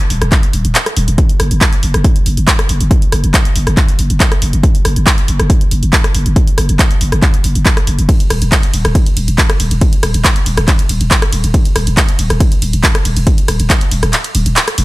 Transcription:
0.10 D1, open hi-hat
0.22 D1, cross-stick, closed hi-hat
0.32 kick, clap, closed hi-hat
0.43 closed hi-hat
0.53 D1, open hi-hat
0.65 D1, closed hi-hat
0.75 clap, closed hi-hat
0.86 cross-stick, closed hi-hat
0.97 D1, open hi-hat
1.08 D1, closed hi-hat
1.18 kick, closed hi-hat
1.29 closed hi-hat
1.40 F#1, cross-stick, open hi-hat
1.51 F#1, closed hi-hat
1.61 kick, clap, closed hi-hat
1.73 closed hi-hat
1.83 F#1, open hi-hat
1.94 F#1, cross-stick, closed hi-hat
2.04 kick, closed hi-hat
2.16 closed hi-hat
2.26 F#1, open hi-hat
2.37 F#1, closed hi-hat
2.48 kick, clap, closed hi-hat
2.59 cross-stick, closed hi-hat
2.69 F#1, open hi-hat
2.81 F#1, closed hi-hat
2.91 kick, closed hi-hat
3.02 closed hi-hat
3.12 F#1, cross-stick, open hi-hat
3.24 F#1, closed hi-hat
3.34 kick, clap, closed hi-hat
3.45 closed hi-hat
3.56 F#1, open hi-hat
3.67 F#1, cross-stick, closed hi-hat
3.77 kick, clap, closed hi-hat
3.89 closed hi-hat
3.99 F#1, open hi-hat
4.10 F#1, closed hi-hat
4.20 kick, clap, closed hi-hat
4.32 cross-stick, closed hi-hat
4.42 F#1, open hi-hat
4.53 F#1, closed hi-hat
4.63 kick, closed hi-hat
4.75 closed hi-hat
4.85 F#1, cross-stick, open hi-hat
4.96 F#1, closed hi-hat
5.07 kick, clap, closed hi-hat
5.18 closed hi-hat
5.28 F#1, open hi-hat
5.40 F#1, cross-stick, closed hi-hat
5.50 kick, closed hi-hat
5.61 closed hi-hat
5.71 F#1, open hi-hat
5.83 F#1, closed hi-hat
5.93 kick, clap, closed hi-hat
6.04 cross-stick, closed hi-hat
6.15 F#1, open hi-hat
6.26 F#1, closed hi-hat
6.36 kick, closed hi-hat
6.47 closed hi-hat
6.58 F#1, cross-stick, open hi-hat
6.69 F#1, closed hi-hat
6.79 kick, clap, closed hi-hat
6.91 closed hi-hat
7.01 F#1, open hi-hat
7.12 F#1, cross-stick, closed hi-hat
7.22 kick, clap, closed hi-hat
7.34 closed hi-hat
7.44 F#1, open hi-hat
7.55 F#1, closed hi-hat
7.66 kick, clap, closed hi-hat
7.77 cross-stick, closed hi-hat
7.87 F#1, open hi-hat
7.99 F#1, closed hi-hat
8.09 kick, closed hi-hat, ride
8.20 closed hi-hat, ride
8.30 D1, cross-stick, open hi-hat, ride
8.42 D1, closed hi-hat, ride
8.52 kick, clap, closed hi-hat, ride
8.63 closed hi-hat, ride
8.74 D1, open hi-hat, ride
8.85 D1, cross-stick, closed hi-hat, ride
8.95 kick, closed hi-hat, ride
9.06 closed hi-hat, ride
9.17 D1, open hi-hat, ride
9.28 D1, closed hi-hat, ride
9.38 kick, clap, closed hi-hat, ride
9.50 cross-stick, closed hi-hat, ride
9.60 D1, open hi-hat, ride
9.71 D1, closed hi-hat, ride
9.81 kick, closed hi-hat, ride
9.93 closed hi-hat, ride
10.03 D1, cross-stick, open hi-hat, ride
10.14 D1, closed hi-hat, ride
10.25 kick, clap, closed hi-hat, ride
10.36 closed hi-hat, ride
10.46 D1, open hi-hat, ride
10.57 D1, cross-stick, closed hi-hat, ride
10.68 kick, clap, closed hi-hat, ride
10.79 closed hi-hat, ride
10.89 D1, open hi-hat, ride
11.01 D1, closed hi-hat, ride
11.11 kick, clap, closed hi-hat, ride
11.22 cross-stick, closed hi-hat, ride
11.33 D1, open hi-hat, ride
11.44 D1, closed hi-hat, ride
11.54 kick, closed hi-hat, ride
11.65 closed hi-hat, ride
11.76 D1, cross-stick, open hi-hat, ride
11.87 D1, closed hi-hat, ride
11.97 kick, clap, closed hi-hat, ride
12.09 closed hi-hat, ride
12.19 D1, open hi-hat, ride
12.30 D1, cross-stick, closed hi-hat, ride
12.40 kick, closed hi-hat, ride
12.52 closed hi-hat, ride
12.62 D1, open hi-hat, ride
12.73 D1, closed hi-hat, ride
12.84 kick, clap, closed hi-hat, ride
12.95 cross-stick, closed hi-hat, ride
13.05 D1, open hi-hat, ride
13.16 D1, closed hi-hat, ride
13.27 kick, closed hi-hat, ride
13.38 closed hi-hat, ride
13.48 D1, cross-stick, open hi-hat, ride
13.60 D1, closed hi-hat, ride
13.70 kick, clap, closed hi-hat, ride
13.81 closed hi-hat, ride
13.91 D1, open hi-hat, ride
14.03 D1, cross-stick, closed hi-hat, ride
14.13 clap, closed hi-hat, ride
14.24 closed hi-hat, ride
14.35 D1, open hi-hat, ride
14.46 D1, closed hi-hat, ride
14.56 clap, closed hi-hat, ride
14.68 cross-stick, closed hi-hat, ride
14.78 D1, open hi-hat, ride

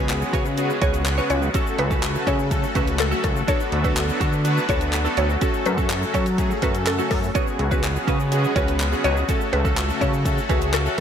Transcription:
Already playing: C#2 C#3 F#3 G#3 B3 C#4 F#4 G#4 B4
0.09 muted clean electric guitar stroke, clap, closed hi-hat, shaker
0.21 muted clean electric guitar stroke, shaker
0.33 C#3 F#4 B4 C#5, kick, closed hi-hat, shaker
0.45 muted clean electric guitar stroke, shaker
0.57 B3 C#4 F#4 G#4, muted clean electric guitar stroke, closed hi-hat, shaker
0.70 muted clean electric guitar stroke, shaker
0.81 C#2 B3 C#4 F#4 G#4 B4 C#5, kick, closed hi-hat, shaker
0.94 muted clean electric guitar stroke, closed hi-hat, shaker
1.06 muted clean electric guitar stroke, clap, closed hi-hat, shaker
1.18 B3 C#4 F#4 B4 C#5, shaker
1.30 C#2 C#5, muted clean electric guitar stroke, closed hi-hat, shaker
1.42 muted clean electric guitar stroke, shaker
1.54 A3 C#4 F#4 A4, kick, closed hi-hat, shaker
1.66 muted clean electric guitar stroke, shaker
1.78 C#2 B4, muted clean electric guitar stroke, closed hi-hat
1.90 A3 C#4 F#4 A4 B4, kick, shaker
2.03 muted clean electric guitar stroke, clap, closed hi-hat, shaker
2.15 muted clean electric guitar stroke, shaker
2.27 C#3 C#4 F#4 A4 C#5, kick, closed hi-hat, shaker
2.39 muted clean electric guitar stroke, shaker
2.51 A3 C#4 F#4 A4, muted clean electric guitar stroke, kick, closed hi-hat, shaker
2.63 muted clean electric guitar stroke, shaker
2.75 C#2 A3 C#4 F#4 A4 B4, kick, closed hi-hat, shaker
2.87 muted clean electric guitar stroke, closed hi-hat, shaker
2.99 A4, muted clean electric guitar stroke, clap, closed hi-hat, shaker
3.11 A3 C#4 F#4 A4, shaker
3.24 C#2 A4, kick, closed hi-hat, shaker
3.36 muted clean electric guitar stroke, shaker
3.47 D3 B3 D4 F#4 A4 C#5, kick, closed hi-hat, shaker
3.60 muted clean electric guitar stroke, shaker
3.72 D2, muted clean electric guitar stroke, closed hi-hat
3.84 B3 D4 F#4 A4 B4, kick, shaker
3.96 muted clean electric guitar stroke, clap, closed hi-hat, shaker
4.08 muted clean electric guitar stroke, shaker
4.20 D3 D4 F#4 A4, kick, closed hi-hat, shaker
4.32 muted clean electric guitar stroke, shaker
4.45 B3 D4 F#4 B4, muted clean electric guitar stroke, closed hi-hat, shaker
4.57 muted clean electric guitar stroke, shaker
4.69 D2 B3 D4 F#4 A4 B4 C#5, kick, closed hi-hat, shaker
4.81 muted clean electric guitar stroke, closed hi-hat, shaker
4.93 muted clean electric guitar stroke, clap, closed hi-hat, shaker
5.05 B3 D4 F#4 A4, shaker
5.17 D2 C#5, muted clean electric guitar stroke, closed hi-hat, shaker
5.29 muted clean electric guitar stroke, shaker
5.41 C#3 A3 C#4 F#4 A4, kick, closed hi-hat, shaker
5.54 shaker
5.66 F#2 B4, muted clean electric guitar stroke, closed hi-hat, shaker
5.77 A3 C#4 F#4 A4, kick, shaker
5.90 muted clean electric guitar stroke, clap, closed hi-hat, shaker
6.02 muted clean electric guitar stroke, shaker
6.14 F#3 C#4 F#4 A4 C#5, kick, closed hi-hat, shaker
6.26 muted clean electric guitar stroke, closed hi-hat, shaker
6.38 A3 C#4 F#4 G#4, kick, closed hi-hat, shaker
6.50 muted clean electric guitar stroke, shaker
6.62 F#2 A3 C#4 F#4 A4 B4, kick, closed hi-hat, shaker
6.74 muted clean electric guitar stroke, closed hi-hat, shaker
6.86 A4, clap, closed hi-hat, shaker
6.99 A3 C#4 F#4 A4, shaker
7.11 F#2 A4, kick, open hi-hat, shaker
7.23 muted clean electric guitar stroke, shaker
7.35 G#3 B3 C#4 F#4 G#4 B4 C#5, kick, closed hi-hat, shaker
7.47 muted clean electric guitar stroke, shaker
7.59 C#2, muted clean electric guitar stroke, closed hi-hat
7.71 B3 C#4 F#4 G#4 B4, kick, shaker
7.83 clap, closed hi-hat, shaker
7.95 muted clean electric guitar stroke, shaker
8.07 C#3 C#4 F#4 B4, kick, closed hi-hat, shaker
8.20 muted clean electric guitar stroke, shaker
8.31 B3 C#4 F#4 G#4, muted clean electric guitar stroke, closed hi-hat, shaker
8.44 muted clean electric guitar stroke, shaker
8.56 C#2 B3 C#4 F#4 B4 C#5, kick, closed hi-hat, shaker
8.68 muted clean electric guitar stroke, closed hi-hat, shaker
8.80 clap, closed hi-hat, shaker
8.92 B3 C#4 F#4 G#4, muted clean electric guitar stroke, shaker
9.04 C#2 C#4 F#4 B4 C#5, closed hi-hat, shaker
9.17 muted clean electric guitar stroke, shaker
9.28 F#3 A3 C#4 F#4 A4, kick, closed hi-hat, shaker
9.41 muted clean electric guitar stroke, shaker
9.53 C#2 B4, muted clean electric guitar stroke, closed hi-hat
9.65 A3 C#4 F#4 A4, kick, shaker
9.77 muted clean electric guitar stroke, clap, closed hi-hat, shaker
9.89 muted clean electric guitar stroke, shaker
10.01 C#3 C#4 F#4 A4 C#5, kick, closed hi-hat, shaker
10.13 muted clean electric guitar stroke, shaker
10.25 A3 C#4 F#4 A4, muted clean electric guitar stroke, kick, closed hi-hat, shaker
10.37 muted clean electric guitar stroke, shaker
10.49 C#2 A3 C#4 F#4 G#4 A4 B4, kick, closed hi-hat, shaker
10.62 muted clean electric guitar stroke, closed hi-hat, shaker
10.73 C#4 F#4 A4, clap, closed hi-hat, shaker
10.86 A3 C#4 F#4 A4, muted clean electric guitar stroke, shaker

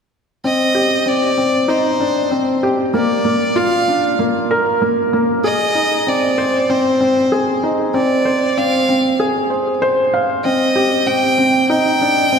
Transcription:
0.44 C4 D#5
0.75 G4
1.06 C4 D5
1.38 C4
1.68 D#4 C5
2.00 D4
2.31 C4
2.63 G4
2.94 A#3 D5
3.25 A#3
3.56 F4 F5
3.88 D4
4.19 A#3
4.51 A#4
4.82 A#3
5.13 A#3
5.44 G#4 D#5
5.75 D#4
6.07 C4 D5
6.38 C5
6.70 C4 C5
7.01 C4
7.32 G#4
7.63 D#4
7.94 C4 D5
8.25 C5
8.57 C4 F5
8.89 C4
9.20 G#4
9.50 C5
9.82 C5
10.14 F5
10.45 C4 D#5
10.76 G4
11.07 C4 G5
11.38 C4
11.70 D#4 G5
12.02 D4
12.32 C4

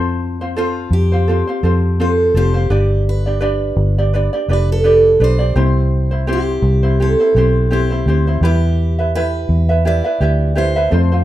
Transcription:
Already playing: F2 C4 F4 A4 C5
0.41 C4 F4 C5
0.56 C4 F4 A4 C5
0.91 F2 G4
1.12 C4 F4 C5
1.28 C4 F4 A4 C5
1.47 C4 F4 C5
1.63 F2 C4 F4 A4 C5
2.00 C4 F4 A4 C5
2.34 F1 C4 F4 G4 A4 C5
2.54 C4 F4 C5
2.70 G1 D4 G4 B4 D5
3.09 B4
3.26 D4 G4 D5
3.41 D4 G4 B4 D5
3.76 G1
3.98 D4 G4 D5
4.14 D4 G4 B4 D5
4.33 D4 G4 D5
4.48 F1 D4 G4 B4 D5
4.53 B4
4.72 A4
4.84 D4 G4 B4 D5
5.20 B1 D4 G4 B4 D5
5.24 C5
5.39 D4 G4 D5
5.54 C2 G3 C4 E4 G4 C5
6.11 C4 E4 C5
6.27 C4 E4 G4 C5
6.33 G4
6.62 C2
6.83 C4 E4 C5
7.00 C4 E4 G4 A4 C5
7.20 C4 E4 C5
7.35 B1 C4 E4 G4 C5
7.71 C4 E4 G4 C5
7.90 C4 E4 C5
8.06 D2 C4 E4 G4 C5
8.27 C4 E4 C5
8.40 E2 G3 E4 G4 B4 B5
8.44 G4 E5
8.99 E4 B4 E5
9.15 E4 G4 B4 E5
9.49 E2
9.69 E4 B4 E5
9.85 E4 G4 B4 D5 E5
10.04 E4 B4 E5
10.21 D2 E4 G4 B4 E5
10.56 E4 G4 B4 C5 E5
10.76 E4 B4 E5
10.90 F2 A3 C4 F4 A4 C5
10.94 C5
11.12 C4 F4 C5

